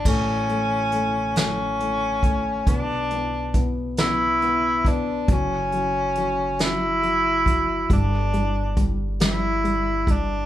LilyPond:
<<
  \new Staff \with { instrumentName = "Tenor saxophone" } { \time 6/8 \key a \mixolydian \tempo 4. = 46 cis'4. cis'4. | d'4 r8 e'4 d'8 | cis'4. e'4. | d'4 r8 e'4 d'8 | }
  \new Staff \with { instrumentName = "Grand piano" } { \clef bass \time 6/8 \key a \mixolydian a8 a8 a8 a8 a8 a8 | b8 b8 b8 b8 b8 b8 | fis8 fis8 fis8 fis8 fis8 fis8 | g8 g8 g8 g8 g8 g8 | }
  \new Staff \with { instrumentName = "Upright bass" } { \clef bass \time 6/8 \key a \mixolydian a,,2. | b,,2. | fis,,2. | g,,2. | }
  \new DrumStaff \with { instrumentName = "Drums" } \drummode { \time 6/8 <cymc bd>8 hh8 hh8 <hh sn>8 hh8 <hh bd>8 | <hh bd>8 hh8 <hh bd>8 <hh sn>8 hh8 <hh bd>8 | <hh bd>8 hh8 hh8 <hh sn>8 hh8 <hh bd>8 | <hh bd>8 hh8 <hh bd>8 <hh sn>8 hh8 <hh bd>8 | }
>>